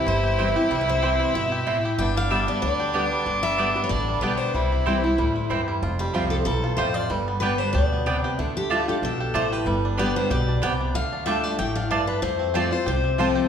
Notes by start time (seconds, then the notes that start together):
Already playing: G3 C4 E4 G4
0.06 G1 G2 E4 C5
0.23 G4
0.38 E3 G3 C4 E4 C5 G5
0.56 C4 E4 G4
0.71 C2 C3 G3
0.81 B4
0.88 E4 C5
1.02 E3 G3 C4 E4 G4 C5 G5
1.19 C4
1.34 G1 B2 E4 E5
1.52 G4
1.66 A2 C4 E4 C5 G5
1.85 G4
1.98 G1 G2 B3 D4 G5
2.17 D4 F5
2.30 D3 G3 B3 G4 D5 E5 G5
2.48 B3 G4 D5
2.62 D2 D3 D4 D5
2.80 G4
2.93 D3 G3 B3 D4 G4 D5 G5
3.12 G3
3.26 G1 G2 D3
3.43 G3 E5
3.58 D3 G3 B3 D4 G4 D5 G5
3.75 B3 G4
3.84 C#5
3.89 A1 D3 D4 D5
4.08 G3
4.21 B1 D3 G3 B3 G4 B4 D5 G5
4.37 D4 C5
4.54 C2 C3 G3 E4
4.72 E4
4.86 C2 E3 G3 C4 E4 G4 C5 G5
5.04 C4 E4
5.18 D2 A2 G3
5.36 C4
5.50 E2 G2 C4 E4 C5 G5
5.68 G3
5.82 F1 F2 F4
5.99 G3 G4
6.14 C2 F3 G3 A3 C4 F4 G4 C5 G5
6.30 C4 A4
6.45 B1 E2 G3 A4
6.64 F4
6.77 A1 F2 A3 F4 G4 C5 G5
6.94 F4 D5
7.10 G1 G2 G3
7.28 B3
7.40 D3 G3 B3 G4 B4 D5 G5
7.58 D4 C5
7.73 D2 B2 G4 D5
7.92 B3
8.06 C3 B3 D4 G4 D5 G5
8.24 G4
8.38 D2 D3 A3
8.57 G4
8.70 D3 A3 D4 F4 D5 A5
8.88 D4 F4 G4 A4
9.02 B1 B2 D4 A4
9.20 G4
9.34 A1 A2 A3 F4 C5 D5 A5
9.52 G4 B4
9.65 G1 G2 G3
9.85 D4
9.97 D3 G3 B3 G4 D5 G5
10.16 G3 C5
10.30 B1 B2 G4 D5
10.48 D4
10.62 C2 C3 B3 G4 D5 G5
10.81 D4
10.94 D2 D3 A3 F5
11.12 D4
11.26 D3 A3 D4 F4 G4 D5 E5 A5
11.44 A3 D5
11.59 A1 A2 G4 G5
11.75 D4 F5
11.91 G2 A3 D4 F4 D5 A5
12.07 D4 B4
12.22 F2 A3 C5
12.39 C4
12.54 F3 A3 C4 F4 G4 C5 D5 A5
12.71 C4 F4 C5
12.86 C2 C3 G4 C5
13.04 C4
13.18 F3 A3 C4 F4 C5 A5
13.35 G4